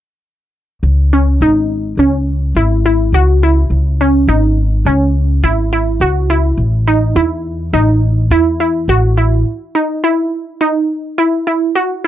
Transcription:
0.83 C#2
1.13 C#4
1.41 G#1 D#4
1.97 C#2 C#4
2.55 G#1 E4
2.86 E4
3.12 C#2 F#4
3.43 E4
3.70 C#2
4.01 C#4
4.28 G#1 D#4
4.85 C#2 C#4
5.43 G#1 E4
5.73 E4
6.00 C#2 F#4
6.30 E4
6.57 A1
6.88 D#4
7.15 E2 E4
7.73 A1 D#4
8.30 E2 E4
8.60 E4
8.88 A1 F#4
9.17 E4
9.75 D#4
10.04 E4
10.61 D#4
11.18 E4
11.47 E4
11.75 F#4

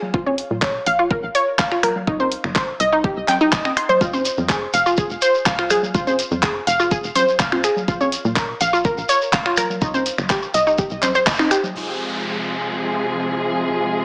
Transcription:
0.02 low conga
0.14 A#1 F4, kick
0.26 C#5, high conga
0.38 open hi-hat
0.51 A#2, low conga
0.62 C#5, kick, clap
0.75 high woodblock
0.86 A#1 F5, open hi-hat
0.99 F4, high woodblock
1.11 A#4, kick
1.23 A#1
1.35 C#5, open hi-hat
1.59 F1 F5, kick, clap
1.72 F4, finger snap
1.83 A#4, finger snap, open hi-hat, low conga
1.96 low conga
2.07 C2 D#4, kick
2.20 C5, high conga
2.32 open hi-hat
2.44 G1, finger snap, low conga
2.56 C5, kick, clap
2.68 high woodblock
2.80 C2 D#5, open hi-hat
2.92 D#4, high woodblock
3.04 G4, kick
3.17 C2
3.28 G5, clap, open hi-hat, high conga, low conga
3.41 D#4
3.52 C2 D#5, kick, clap
3.65 D#5, finger snap, high conga
3.77 C6, finger snap, open hi-hat
3.89 C5, low conga
4.01 F1 F4, kick, shekere
4.13 C5, high conga, shekere
4.25 open hi-hat, shekere
4.37 F2, low conga, shekere
4.49 G#4, kick, clap, shekere
4.62 high woodblock
4.73 F1 F5, open hi-hat, shekere
4.86 F4, high woodblock, shekere
4.97 G#4, kick, shekere
5.10 F1, shekere
5.21 C5, open hi-hat, shekere
5.34 shekere
5.46 C2 F5, kick, clap, shekere
5.59 F4, finger snap
5.70 G#4, finger snap, open hi-hat, low conga, shekere
5.83 low conga, shekere
5.95 F1 F4, kick, shekere
6.07 C5, high conga, shekere
6.19 open hi-hat, shekere
6.31 F2, low conga, shekere
6.43 G#4, kick, clap, shekere
6.55 high woodblock
6.67 F1 F5, open hi-hat, shekere
6.80 F4, high woodblock, shekere
6.91 G#4, kick, shekere
7.04 F1, shekere
7.15 C5, open hi-hat, high conga, low conga, shekere
7.28 shekere
7.39 C2 F5, kick, clap, shekere
7.52 F4, finger snap, high conga
7.64 G#4, finger snap, open hi-hat, shekere
7.76 low conga, shekere
7.88 A#1 F4, kick, shekere
8.01 C#5, high conga, shekere
8.12 open hi-hat, shekere
8.25 A#2, low conga, shekere
8.36 A#4, kick, clap, shekere
8.49 high woodblock
8.61 A#1 F5, open hi-hat, shekere
8.73 F4, high woodblock, shekere
8.85 A#4, kick, shekere
8.97 A#1, shekere
9.09 C#5, open hi-hat, shekere
9.21 shekere
9.32 F1 F5, kick, clap, shekere
9.46 F4, finger snap
9.57 A#4, finger snap, open hi-hat, low conga, shekere
9.70 low conga, shekere
9.81 C2 D#4, kick, shekere
9.94 C5, high conga, shekere
10.06 open hi-hat, shekere
10.18 G1, finger snap, low conga, shekere
10.29 G4, kick, clap, shekere
10.42 high woodblock, shekere
10.54 C2 D#5, open hi-hat, shekere
10.67 D#4, high woodblock, shekere
10.78 G4, kick, shekere
10.90 C2, shekere
11.02 C5, clap, open hi-hat, high conga, low conga, shekere
11.15 C5, shekere
11.26 G1 D#5, kick, clap, shekere
11.39 D#4, finger snap, high conga, shekere
11.51 G4, finger snap, open hi-hat, shekere
11.64 low conga, shekere
11.75 F1 C3 F3 G#3 F4 G#4, downlifter
13.69 F1

